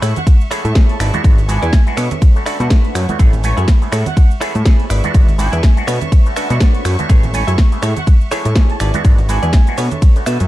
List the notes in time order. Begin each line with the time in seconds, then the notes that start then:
Already playing: E5 C#6
0.02 A2 E4 G#4 A4 C#5, finger snap, open hi-hat, shaker
0.16 F#5, closed hi-hat, low conga, shaker
0.27 muted clean electric guitar stroke, kick, closed hi-hat, ride, high conga, shaker
0.41 shaker
0.51 E3 A3 B3 C#4 E4 G#4 A4 C#5, finger snap, open hi-hat, shaker
0.64 A2, closed hi-hat, high conga, shaker
0.75 E3 A3 B3 C#4 E4 G#4 A4 C#5, kick, snare, closed hi-hat, ride, shaker
0.89 A5, closed hi-hat, shaker
0.99 G#1 E4 G#4 B4 D5 A5, finger snap, open hi-hat, shaker
1.13 E3 G#3 B3 D4 F#4, closed hi-hat, high conga, low conga, shaker
1.24 G#1 E3 B3, kick, closed hi-hat, ride, shaker
1.38 closed hi-hat, low conga, shaker
1.48 E3 G#3 B3 D4 F#4 G#5, muted clean electric guitar stroke, open hi-hat, high conga, shaker
1.62 E2 E4 G#4 B4 D5, closed hi-hat, shaker
1.73 kick, snare, closed hi-hat, ride, shaker
1.87 E3 G#3 B3 D4 F#4, muted clean electric guitar stroke, closed hi-hat, high conga, shaker
1.97 B2 D4 A4 B4 C#5, finger snap, open hi-hat, shaker
2.11 closed hi-hat, low conga, shaker
2.22 kick, closed hi-hat, ride, high conga, shaker
2.35 D3 A3 B3 C#4 F#4, shaker
2.46 D3 A3 B3 C#4 D4 F#4 A4 B4 D5 E5, finger snap, open hi-hat, shaker
2.60 B2 D3 A3 B3 F#4, closed hi-hat, high conga, shaker
2.70 D4 A4 B4 E5 F#5, kick, snare, closed hi-hat, ride, shaker
2.84 closed hi-hat, shaker
2.95 F#2, finger snap, open hi-hat, shaker
3.09 D3 A3 B3 C#4 F#4, closed hi-hat, high conga, low conga, shaker
3.19 A1 E3 B3 C#4 E4 G#4 A4 C#5 E5 C#6, kick, closed hi-hat, ride, shaker
3.33 closed hi-hat, low conga, shaker
3.43 E3 A3 B3 C#4 C#5 G#5, muted clean electric guitar stroke, open hi-hat, high conga, shaker
3.57 F#2 E4 G#4 A4 C#5, closed hi-hat, shaker
3.68 kick, snare, closed hi-hat, ride, shaker
3.82 E3 A3 B3 C#4 G#4, muted clean electric guitar stroke, closed hi-hat, high conga, shaker
3.92 A2 E4 G#4 A4 C#5, finger snap, open hi-hat, shaker
4.06 F#5, closed hi-hat, low conga, shaker
4.17 F#5, muted clean electric guitar stroke, kick, closed hi-hat, ride, high conga, shaker
4.31 shaker
4.41 E3 A3 B3 C#4 E4 G#4 A4 C#5, finger snap, open hi-hat, shaker
4.55 A2, closed hi-hat, high conga, shaker
4.65 E3 A3 B3 C#4 E4 G#4 A4 C#5, kick, snare, closed hi-hat, ride, shaker
4.80 closed hi-hat, shaker
4.90 G#1 E4 G#4 B4 D5, finger snap, open hi-hat, shaker
5.04 E3 G#3 B3 D4 F#4, closed hi-hat, high conga, low conga, shaker
5.14 G#1 E3 G#3 B3 D4 F#4, kick, closed hi-hat, ride, shaker
5.28 closed hi-hat, low conga, shaker
5.38 E3 G#3 B3 D4 F#4 G#5, muted clean electric guitar stroke, open hi-hat, high conga, shaker
5.52 E2 E4 G#4 B4 D5, closed hi-hat, shaker
5.63 kick, snare, closed hi-hat, ride, shaker
5.77 E3 G#3 B3 D4 F#4, muted clean electric guitar stroke, closed hi-hat, high conga, shaker
5.87 B2 D4 A4 B4 C#5, finger snap, open hi-hat, shaker
6.02 closed hi-hat, low conga, shaker
6.12 kick, closed hi-hat, ride, high conga, shaker
6.26 D3 A3 B3 C#4 F#4, shaker
6.36 D3 A3 B3 C#4 D4 F#4 A4 B4 E5, finger snap, open hi-hat, shaker
6.50 B2 D3 A3 B3 F#4 C#5, closed hi-hat, high conga, shaker
6.60 D4 A4 B4 C#5, kick, snare, closed hi-hat, ride, shaker
6.74 closed hi-hat, shaker
6.85 F#2, finger snap, open hi-hat, shaker
6.99 D3 A3 B3 C#4 F#4, closed hi-hat, high conga, low conga, shaker
7.09 A1 E3 A3 B3 C#4 E4 G#4 A4 C#5, kick, closed hi-hat, ride, shaker
7.23 closed hi-hat, low conga, shaker
7.33 E3 A3 B3 C#4 C#5 G#5, muted clean electric guitar stroke, open hi-hat, high conga, shaker
7.47 F#2 E4 G#4 A4 E5, closed hi-hat, shaker
7.58 kick, snare, closed hi-hat, ride, shaker
7.72 E3 A3 B3 C#4 G#4, muted clean electric guitar stroke, closed hi-hat, high conga, shaker
7.82 A2 E4 G#4 A4 C#5, finger snap, open hi-hat, shaker
7.97 F#5, closed hi-hat, low conga, shaker
8.07 muted clean electric guitar stroke, kick, closed hi-hat, ride, high conga, shaker
8.21 shaker
8.31 E3 A3 B3 C#4 E4 G#4 A4 C#5, finger snap, open hi-hat, shaker
8.45 A2, closed hi-hat, high conga, shaker
8.55 E3 A3 B3 C#4 E4 G#4 A4 C#5, kick, snare, closed hi-hat, ride, shaker
8.70 A5, closed hi-hat, shaker
8.80 G#1 E4 G#4 B4 D5 A5, finger snap, open hi-hat, shaker
8.94 E3 G#3 B3 D4 F#4, closed hi-hat, high conga, low conga, shaker
9.04 G#1 E3 G#3 B3 D4, kick, closed hi-hat, ride, shaker
9.18 closed hi-hat, low conga, shaker
9.29 E3 G#3 B3 D4 F#4 G#5, muted clean electric guitar stroke, open hi-hat, high conga, shaker
9.43 E2 E4 G#4 B4 D5, closed hi-hat, shaker
9.53 kick, snare, closed hi-hat, ride, shaker
9.67 E3 G#3 B3 D4 F#4, muted clean electric guitar stroke, closed hi-hat, high conga, shaker
9.78 B2 D4 A4 B4 C#5, open hi-hat, shaker
9.91 closed hi-hat, low conga, shaker
10.02 kick, closed hi-hat, ride, high conga, shaker
10.16 D3 A3 B3 C#4 F#4, closed hi-hat, shaker
10.26 B2 D4 A4 B4 E5, finger snap, open hi-hat, shaker
10.40 F#2, closed hi-hat, high conga, shaker